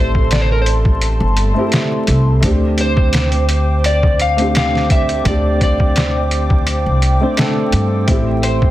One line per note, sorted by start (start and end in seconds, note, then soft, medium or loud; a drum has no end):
0.00 1.20 A1 loud
0.00 1.54 A3 medium
0.00 1.56 C4 medium
0.00 1.57 E4 medium
0.00 1.59 G4 medium
0.00 2.39 A4 medium
0.00 0.28 C5 loud
0.00 2.40 A5 medium
0.00 2.39 C6 medium
0.15 kick loud
0.31 0.41 D5 medium
0.31 snare loud
0.31 closed hi-hat medium
0.41 0.50 C5 medium
0.52 0.59 A#4 medium
0.62 0.68 C5 medium
0.66 closed hi-hat medium
0.85 kick medium
1.02 closed hi-hat medium
1.20 1.51 G1 medium
1.37 closed hi-hat medium
1.54 2.38 A3 medium
1.54 2.39 C4 medium
1.54 2.40 E4 medium
1.59 2.41 G4 medium
1.72 snare loud
1.72 closed hi-hat medium
2.07 2.39 C2 loud
2.07 closed hi-hat medium
2.40 5.22 D2 loud
2.40 4.33 A3 medium
2.40 4.33 C4 medium
2.40 4.34 D4 medium
2.40 8.04 C5 medium
2.40 8.71 G5 medium
2.40 8.04 D6 medium
2.40 kick loud
2.40 closed hi-hat medium
2.46 4.35 G4 medium
2.78 3.85 C5 loud
2.78 closed hi-hat medium
2.97 kick loud
3.13 snare loud
3.13 closed hi-hat medium
3.32 closed hi-hat soft
3.49 closed hi-hat medium
3.84 4.18 D5 loud
3.84 closed hi-hat medium
4.03 kick medium
4.19 4.55 F5 loud
4.19 closed hi-hat medium
4.37 5.21 A3 medium
4.37 5.21 C4 medium
4.37 5.22 D4 medium
4.37 closed hi-hat soft
4.42 5.23 G4 medium
4.55 4.91 F5 loud
4.55 snare loud
4.55 closed hi-hat medium
4.75 snare soft
4.90 5.27 E5 loud
4.90 kick loud
4.90 closed hi-hat medium
5.09 closed hi-hat soft
5.24 6.86 D2 medium
5.24 7.15 A3 medium
5.24 7.16 C4 medium
5.24 7.17 D4 medium
5.24 5.62 D5 loud
5.24 kick loud
5.24 closed hi-hat medium
5.29 7.18 G4 medium
5.61 7.70 D5 medium
5.61 kick loud
5.61 closed hi-hat medium
5.80 kick loud
5.96 snare loud
5.96 closed hi-hat medium
6.31 closed hi-hat medium
6.50 kick medium
6.67 closed hi-hat medium
6.86 7.17 C2 medium
7.02 closed hi-hat medium
7.20 7.33 A3 medium
7.20 7.33 C4 medium
7.20 7.34 D4 medium
7.20 7.34 C5 medium
7.37 8.04 A3 medium
7.37 8.04 C4 medium
7.37 8.05 D4 medium
7.37 8.05 A4 loud
7.37 snare loud
7.37 closed hi-hat medium
7.72 8.04 G2 loud
7.72 closed hi-hat medium
8.07 8.71 A1 medium
8.07 8.71 A3 medium
8.07 8.71 C4 medium
8.07 8.71 E4 medium
8.07 8.71 A4 medium
8.07 8.71 C6 medium
8.07 kick loud
8.07 closed hi-hat medium
8.11 8.71 G4 medium
8.43 8.71 C5 medium
8.43 closed hi-hat medium
8.62 kick loud